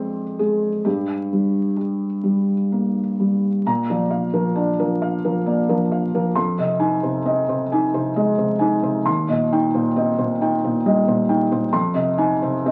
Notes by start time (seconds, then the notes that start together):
Already playing: F2 G#3 C4 G4 C5 D5
0.39 G#3 G#4
0.85 G2 G4
1.33 G3
1.77 G4
2.23 G3
2.72 A#3
3.20 G3
3.66 A#2 A#5
3.90 F3 D5
4.10 F5
4.34 F3 A#4
4.55 D4 D5
4.79 F3 A#4
5.02 F5
5.25 F3 A#4
5.46 A#3 D5
5.69 F3 A#4
5.92 F5
6.15 F3 A#4
6.35 F2 C6
6.58 C3 D#5
6.79 D#4 G#5
7.03 C3 C5
7.25 C4 D#5
7.49 C3 C5
7.72 D#4 G#5
7.94 C3 C5
8.16 G#3 D#5
8.38 C3 C5
8.59 D#4 G#5
8.82 C3 C5
9.06 D#2 C6
9.29 A#2 D#5
9.52 D#4 G5
9.74 A#2 C5
9.96 C4 D#5
10.19 A#2 C5
10.41 D#4 G5
10.64 A#2 C5
10.85 G3 D#5
11.08 A#2 C5
11.29 D#4 G5
11.52 A#2 C5
11.73 F2 C6
11.94 C3 D#5
12.18 D#4 G#5
12.42 C3 C5
12.66 C4 D#5